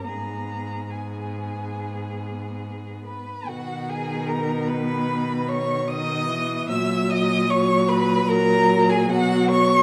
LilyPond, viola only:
\new Staff \with { instrumentName = "Viola" } { \clef bass \time 4/4 \key gis \minor \tempo 4 = 74 b4 b2~ b8. r16 | \key b \major dis2. dis8 e8 | fis4 fis4 fis4 fis4 | }